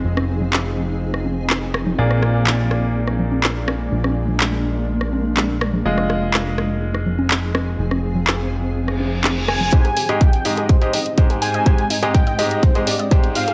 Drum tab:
HH |----------------|----------------|----------------|----------------|
CP |----x-------x---|----x-------x---|----x-------x---|----x-------x---|
SD |-r-------r----r-|-rr---r--r----r-|-r-------r----r-|-rr---r--r----r-|
CG |-o-O------o-o--O|----------Oo--o-|-o-O------o-o--O|----------Oo--o-|
BD |----------------|----------------|----------------|----------------|

HH |----------------|xxoxxxoxxxoxxxox|xxoxxxoxxxoxxxox|
CP |----x-------x---|----------------|----------------|
SD |-r-------r----r-|----------------|----------------|
CG |-o-O------o-o--O|----------------|----------------|
BD |----------------|o---o---o---o---|o---o---o---o---|